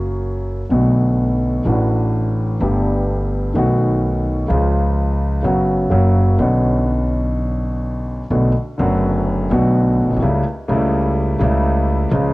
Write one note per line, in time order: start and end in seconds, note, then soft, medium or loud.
0.00 0.61 F#1 medium
0.00 0.61 F#2 medium
0.00 0.61 C#3 soft
0.00 0.61 F#3 medium
0.00 0.62 A#3 soft
0.00 0.63 F#4 medium
0.69 1.62 B1 medium
0.69 1.62 B2 medium
0.69 1.61 D3 soft
0.69 1.62 A3 soft
0.69 1.62 B3 soft
0.73 1.63 F#4 medium
1.65 2.56 A1 medium
1.65 2.57 A1 medium
1.65 2.57 A2 medium
1.65 2.56 E3 medium
1.65 2.57 A3 soft
1.65 2.58 D4 soft
1.69 2.58 F#4 medium
2.60 3.51 G1 medium
2.60 3.52 G2 medium
2.60 3.51 D3 soft
2.60 3.51 A3 soft
2.60 3.52 B3 soft
2.60 3.53 G4 medium
3.54 4.45 B1 medium
3.54 4.46 B1 medium
3.54 4.46 B2 medium
3.54 4.45 D#3 medium
3.54 4.45 A3 soft
3.54 4.46 B3 soft
3.58 4.47 F#4 medium
4.48 5.40 C#2 medium
4.48 5.40 C#3 medium
4.48 5.40 F3 soft
4.48 5.40 G#3 soft
4.52 5.41 F4 medium
5.43 5.90 F#1 medium
5.43 5.90 F#2 medium
5.43 5.88 C#3 medium
5.43 5.90 F#3 medium
5.43 5.90 B3 soft
5.47 5.91 F#4 medium
5.90 6.37 F#1 medium
5.90 6.37 F#2 medium
5.90 6.36 C#3 medium
5.90 6.37 F#3 medium
5.90 6.37 A#3 medium
5.94 6.38 F#4 medium
6.38 8.21 B1 medium
6.38 8.22 B1 medium
6.38 8.22 B2 medium
6.38 8.21 D3 medium
6.38 8.21 B3 soft
6.38 8.22 C#4 soft
6.42 8.23 F#4 medium
8.30 8.51 B1 medium
8.30 8.51 B2 medium
8.30 8.51 D3 medium
8.30 8.51 A3 soft
8.30 8.51 B3 soft
8.30 8.52 F#4 medium
8.78 9.47 F#1 medium
8.78 9.48 F#1 medium
8.78 9.48 F#2 medium
8.78 9.47 D3 medium
8.78 9.47 A3 medium
8.78 9.48 B3 medium
8.78 9.49 F#4 medium
9.49 10.04 B1 medium
9.49 10.09 B1 medium
9.49 10.19 B2 medium
9.49 10.18 D3 medium
9.49 10.19 A3 medium
9.49 10.19 B3 medium
9.49 10.20 F#4 medium
10.05 10.10 A#1 soft
10.05 10.11 A#1 soft
10.10 10.16 B1 medium
10.10 10.17 B1 medium
10.16 10.21 C2 medium
10.16 10.23 C2 medium
10.22 10.42 C#2 medium
10.22 10.42 C#3 medium
10.22 10.42 G3 soft
10.22 10.42 A3 soft
10.22 10.42 E4 medium
10.68 11.37 C#2 medium
10.68 11.37 C#3 medium
10.68 11.37 G3 medium
10.68 11.38 A3 medium
10.72 11.38 E4 medium
11.39 12.08 C#2 medium
11.39 12.09 C#2 medium
11.39 12.09 C#3 medium
11.39 12.08 G3 medium
11.39 12.09 A3 medium
11.43 12.10 E4 medium
12.11 12.32 C#2 medium
12.11 12.32 C#3 medium
12.11 12.32 F3 medium
12.11 12.32 G#3 medium
12.11 12.32 F4 medium